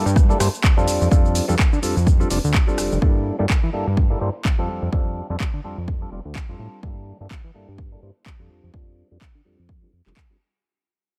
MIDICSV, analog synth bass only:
0, 0, Header, 1, 2, 480
1, 0, Start_track
1, 0, Tempo, 476190
1, 1125, Time_signature, 4, 2, 24, 8
1, 11275, End_track
2, 0, Start_track
2, 0, Title_t, "Analog synth bass"
2, 0, Program_c, 0, 38
2, 58, Note_on_c, 0, 43, 98
2, 342, Note_off_c, 0, 43, 0
2, 404, Note_on_c, 0, 43, 85
2, 490, Note_off_c, 0, 43, 0
2, 778, Note_on_c, 0, 41, 100
2, 876, Note_off_c, 0, 41, 0
2, 883, Note_on_c, 0, 41, 44
2, 993, Note_off_c, 0, 41, 0
2, 1021, Note_on_c, 0, 41, 78
2, 1086, Note_off_c, 0, 41, 0
2, 1125, Note_on_c, 0, 41, 100
2, 1420, Note_off_c, 0, 41, 0
2, 1504, Note_on_c, 0, 41, 89
2, 1568, Note_off_c, 0, 41, 0
2, 1742, Note_on_c, 0, 50, 102
2, 1807, Note_off_c, 0, 50, 0
2, 1846, Note_on_c, 0, 41, 42
2, 1955, Note_off_c, 0, 41, 0
2, 1981, Note_on_c, 0, 41, 101
2, 2263, Note_off_c, 0, 41, 0
2, 2327, Note_on_c, 0, 29, 85
2, 2412, Note_off_c, 0, 29, 0
2, 2462, Note_on_c, 0, 38, 99
2, 2601, Note_off_c, 0, 38, 0
2, 2806, Note_on_c, 0, 29, 42
2, 2914, Note_off_c, 0, 29, 0
2, 2942, Note_on_c, 0, 29, 79
2, 3007, Note_off_c, 0, 29, 0
2, 3044, Note_on_c, 0, 43, 97
2, 3340, Note_off_c, 0, 43, 0
2, 3424, Note_on_c, 0, 43, 89
2, 3488, Note_off_c, 0, 43, 0
2, 3663, Note_on_c, 0, 52, 100
2, 3727, Note_off_c, 0, 52, 0
2, 3767, Note_on_c, 0, 43, 43
2, 3875, Note_off_c, 0, 43, 0
2, 3902, Note_on_c, 0, 43, 99
2, 4184, Note_off_c, 0, 43, 0
2, 4246, Note_on_c, 0, 43, 83
2, 4331, Note_off_c, 0, 43, 0
2, 4622, Note_on_c, 0, 41, 98
2, 4721, Note_off_c, 0, 41, 0
2, 4727, Note_on_c, 0, 41, 43
2, 4835, Note_off_c, 0, 41, 0
2, 4860, Note_on_c, 0, 41, 78
2, 4926, Note_off_c, 0, 41, 0
2, 4965, Note_on_c, 0, 41, 100
2, 5261, Note_off_c, 0, 41, 0
2, 5339, Note_on_c, 0, 41, 95
2, 5406, Note_off_c, 0, 41, 0
2, 5581, Note_on_c, 0, 50, 102
2, 5646, Note_off_c, 0, 50, 0
2, 5686, Note_on_c, 0, 41, 41
2, 5794, Note_off_c, 0, 41, 0
2, 5823, Note_on_c, 0, 41, 98
2, 6104, Note_off_c, 0, 41, 0
2, 6163, Note_on_c, 0, 29, 88
2, 6250, Note_off_c, 0, 29, 0
2, 6300, Note_on_c, 0, 38, 97
2, 6440, Note_off_c, 0, 38, 0
2, 6541, Note_on_c, 0, 41, 88
2, 6606, Note_off_c, 0, 41, 0
2, 6643, Note_on_c, 0, 45, 100
2, 6730, Note_off_c, 0, 45, 0
2, 6885, Note_on_c, 0, 43, 97
2, 7180, Note_off_c, 0, 43, 0
2, 7261, Note_on_c, 0, 43, 92
2, 7326, Note_off_c, 0, 43, 0
2, 7502, Note_on_c, 0, 52, 100
2, 7567, Note_off_c, 0, 52, 0
2, 7604, Note_on_c, 0, 43, 43
2, 7714, Note_off_c, 0, 43, 0
2, 7743, Note_on_c, 0, 43, 97
2, 8024, Note_off_c, 0, 43, 0
2, 8088, Note_on_c, 0, 43, 80
2, 8172, Note_off_c, 0, 43, 0
2, 8460, Note_on_c, 0, 41, 99
2, 8562, Note_off_c, 0, 41, 0
2, 8568, Note_on_c, 0, 41, 42
2, 8675, Note_off_c, 0, 41, 0
2, 8703, Note_on_c, 0, 41, 76
2, 8767, Note_off_c, 0, 41, 0
2, 8806, Note_on_c, 0, 41, 100
2, 9101, Note_off_c, 0, 41, 0
2, 9185, Note_on_c, 0, 41, 93
2, 9249, Note_off_c, 0, 41, 0
2, 9425, Note_on_c, 0, 50, 100
2, 9489, Note_off_c, 0, 50, 0
2, 9532, Note_on_c, 0, 41, 43
2, 9637, Note_off_c, 0, 41, 0
2, 9667, Note_on_c, 0, 41, 96
2, 9946, Note_off_c, 0, 41, 0
2, 10007, Note_on_c, 0, 41, 80
2, 10092, Note_off_c, 0, 41, 0
2, 10142, Note_on_c, 0, 29, 104
2, 10207, Note_off_c, 0, 29, 0
2, 11275, End_track
0, 0, End_of_file